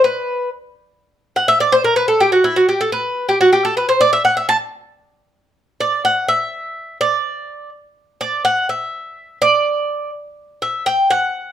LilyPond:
\new Staff \with { instrumentName = "Cuban tres" } { \time 4/4 \key d \mixolydian \tempo 4 = 125 b'4 r4. r16 fis''16 e''16 d''16 c''16 bes'16 | b'16 a'16 g'16 fis'16 e'16 fis'16 g'16 a'16 b'8. g'16 fis'16 g'16 a'16 b'16 | c''16 d''16 e''16 fis''16 e''16 a''16 r2 r8 | d''8 fis''8 e''4. d''4. |
r4 d''8 fis''8 e''4. d''8~ | d''4 r4 e''8 g''8 fis''4 | }